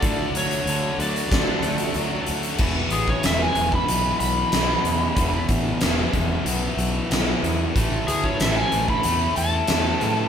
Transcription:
<<
  \new Staff \with { instrumentName = "Electric slide guitar" } { \time 4/4 \key e \mixolydian \tempo 4 = 93 d''8 cis''4 d''2 r8 | r8 gis'16 cis''16 e''16 gis''8 b''8. b''4.~ | b''8 r2. r8 | r8 gis'16 cis''16 e''16 gis''8 b''8. a''4. | }
  \new Staff \with { instrumentName = "Distorted electric guitar" } { \clef bass \time 4/4 \key e \mixolydian <d fis a d'>8 fis8 d8 fis8 d'8 a8 fis8 d8 | <e, b, e>2 <e, b, e>2 | <e, b, e>2 <e, b, e>2 | <a, e a>2 <a, e a>2 | }
  \new Staff \with { instrumentName = "Fingered electric bass" } { \clef bass \time 4/4 \key e \mixolydian d,8 d,8 d,8 d,8 d,8 d,8 d,8 d,8 | e,,8 a,,8 e,,8 e,,8 b,,8 b,,8 b,,8 e,8 | e,,8 a,,8 e,,8 e,,8 b,,8 b,,8 b,,8 e,8 | a,,8 d,8 a,,8 a,,8 e,8 e,8 e,8 a,8 | }
  \new DrumStaff \with { instrumentName = "Drums" } \drummode { \time 4/4 <hh bd>8 hh16 hh16 hh8 hh16 hh16 <hh bd sn>8 hh16 hh16 hh8 hh16 hh16 | <cymc bd>8 hh16 bd16 <hh sn>8 hh16 bd16 hh8 hh8 <hh sn>8 hh8 | <hh bd>8 <hh bd>8 <hh sn>8 <hh bd>8 hh8 hh8 <hh sn>8 hh8 | <hh bd>8 hh16 bd16 <hh sn>8 hh16 bd16 hh8 hh8 <hh sn>8 <hh sn>8 | }
>>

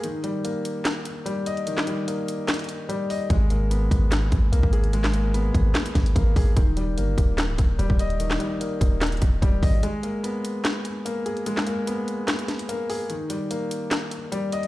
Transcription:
<<
  \new Staff \with { instrumentName = "Felt piano" } { \time 4/4 \key gis \minor \tempo 4 = 147 dis8 g8 ais2 g8 dis''8 | dis8 g8 ais2 g8 dis''8 | gis8 ais8 b2 ais8 gis'8 | gis8 ais8 b2 ais8 gis'8 |
dis8 g8 ais2 g8 dis''8 | dis8 g8 ais2 g8 dis''8 | gis8 ais8 b2 ais8 gis'8 | gis8 ais8 b2 ais8 gis'8 |
dis8 g8 ais2 g8 dis''8 | }
  \new Staff \with { instrumentName = "808-style bass" } { \clef bass \time 4/4 \key gis \minor r1 | r1 | gis,,4. gis,,4 gis,,8 b,,16 gis,,8.~ | gis,,4. gis,,8 r8 gis,,8 gis,,8 gis,,8 |
dis,,4 g,,8 dis,,8. cis,,16 dis,,8 dis,,16 dis,,8.~ | dis,,8 r4 dis,,4 dis,,8 dis,,8 gis,,8 | r1 | r1 |
r1 | }
  \new DrumStaff \with { instrumentName = "Drums" } \drummode { \time 4/4 hh8 hh8 hh8 hh8 <hc hh sn>8 hh8 hh8 hh16 hh16 | hh16 <hc sn>16 hh8 hh8 hh8 <hc hh sn>32 hh32 hh32 hh32 hh8 hh8 hho8 | <hh bd>8 hh8 hh8 <hh bd>8 <hc hh sn>8 <hh bd>8 hh16 bd16 hh16 hh16 | hh16 <hc sn>16 hh8 hh8 <hh bd>8 <hc hh sn>16 hh16 <hh bd sn>16 hh16 <hh bd>8 <hho bd>8 |
<hh bd>8 hh8 hh8 <hh bd>8 <hc hh sn>8 <hh bd>8 hh16 bd16 hh16 hh16 | hh16 <hc sn>16 hh8 hh8 <hh bd>8 <hc hh sn>32 hh32 hh32 hh32 <hh bd>8 <hh bd>8 <hho bd>8 | hh8 hh8 hh8 hh8 <hc hh sn>8 hh8 hh8 hh16 hh16 | hh16 <hc sn>16 hh8 hh8 hh8 <hc hh sn>16 hh16 <hh sn>16 hh16 hh8 hho8 |
hh8 hh8 hh8 hh8 <hc hh sn>8 hh8 hh8 hh16 hh16 | }
>>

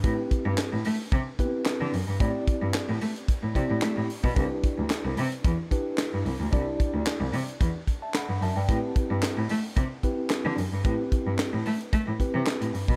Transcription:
<<
  \new Staff \with { instrumentName = "Tine electric piano" } { \time 4/4 \key a \minor \tempo 4 = 111 << { r1 | r1 | r1 | r2 r8. <e'' a''>16 <fis'' b''>8 <e'' a''>16 <d'' g''>16~ |
<d'' g''>16 r2. r8. | r1 | } \\ { <c' e' g' b'>4. r4 <b c' e' g' b'>4 r8 | <c' e' g' d''>4. r4 <c' e' g' d''>4 r8 | <d' e' g' b'>4. r4 <d' e' g' b'>4 r8 | <d' e' g' d''>4. r2 r8 |
<c' e' g' b'>4. r4 <c' e' g' b'>4 r8 | <c' e' g' b'>4. r4 <c' e' g' b'>4 r8 | } >> }
  \new Staff \with { instrumentName = "Cello" } { \clef bass \time 4/4 \key a \minor a,8. g,16 r16 a,16 a8 c8 r8. d16 fis,16 g,16 | a,8. g,16 r16 a,16 a8 r16 a,16 c16 a,16 a16 a,16 r16 b,16 | c,8. d,16 r16 c,16 c8 e,8 r8. g,16 c,16 d,16 | c,8. d,16 r16 c,16 c8 e,8 r8. g,16 fis,16 g,16 |
a,8. g,16 r16 a,16 a8 c8 r8. d16 fis,16 g,16 | a,8. g,16 r16 a,16 a8 a16 a,16 r16 c16 r16 a,16 g,16 b,16 | }
  \new DrumStaff \with { instrumentName = "Drums" } \drummode { \time 4/4 <hh bd>8 <hh bd>8 <hc hh sn>8 hho8 <hh bd>8 <hh bd>8 <hc hh sn>8 hho8 | <hh bd>8 <hh bd>8 <hc hh sn>8 hho16 hh16 <hh bd>8 <hh bd>8 <hc hh sn>8 hho16 bd16 | <hh bd>8 <hh bd>8 <hc hh sn>8 hho16 hh16 <hh bd>8 <hh bd>8 <hc hh sn>8 hho8 | <hh bd>8 <hh bd>8 <hc hh sn>8 hho16 hh16 <hh bd>8 <hh bd>8 <hc hh sn>8 hho8 |
<hh bd>8 <hh bd>8 <hc hh sn>8 hho8 <hh bd>8 <hh bd>8 <hc hh sn>8 hho8 | <hh bd>8 <hh bd>8 <hc hh sn>8 hho16 hh16 <hh bd>8 <hh bd>8 <hc hh sn>16 hh16 hho16 bd16 | }
>>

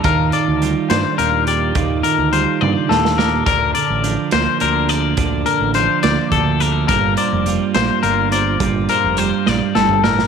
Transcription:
<<
  \new Staff \with { instrumentName = "Clean electric guitar" } { \time 6/8 \key g \minor \tempo 4. = 70 bes'8 d''4 c''8 bes'8 d''8~ | d''8 bes'8 c''8 d''8 a'8 bes'8 | bes'8 d''4 c''8 bes'8 d''8~ | d''8 bes'8 c''8 d''8 a'8 bes'8 |
bes'8 d''4 c''8 bes'8 d''8~ | d''8 bes'8 c''8 d''8 a'8 bes'8 | }
  \new Staff \with { instrumentName = "Clean electric guitar" } { \time 6/8 \key g \minor << { f'8 a'8 f'8 d'8 f'8 g'8 | f'8 a'8 f'8 d'8 f'8 g'8 | d'8 a'8 d'8 bes8 d'8 a'8 | d'8 a'8 d'8 bes8 d'8 a'8 |
<g bes f' a'>8 c''8 f'8 bes8 f'8 c''8 | f'8 c''8 f'2 | } \\ { ees4 g4 bes,4 | ees4 g4 bes,4 | d4 f4 d4 | d4 f4 d4 |
g,4 g4 d4 | g,4 g4 g,8 a,8 | } >> }
  \new Staff \with { instrumentName = "Fingered electric bass" } { \clef bass \time 6/8 \key g \minor ees,8 r16 d,8 r16 g,16 r16 ees,4 | ees,8 r16 d,8 r16 g,16 r16 ees,4 | d,8 r16 a,,8 r16 d,16 r16 d,4 | d,8 r16 a,,8 r16 d,16 r16 d,4 |
g,,8 r16 f,,8 r16 bes,,16 r16 g,,4 | g,,8 r16 f,,8 r16 bes,,16 r16 g,,4 | }
  \new DrumStaff \with { instrumentName = "Drums" } \drummode { \time 6/8 <hh bd>8 hh8 hh8 <hh sn>8 hh8 hh8 | <hh bd>8 hh8 hh8 tommh8 sn16 sn16 sn8 | <hh bd>8 hh8 hh8 <hh sn>8 hh8 hh8 | <hh bd>8 hh8 hh8 <hh sn>8 <hh bd>8 hh8 |
<hh bd>8 hh8 hh8 <hh sn>8 hh8 hh8 | <hh bd>8 hh8 hh8 sn8 sn16 toml16 sn16 sn16 | }
>>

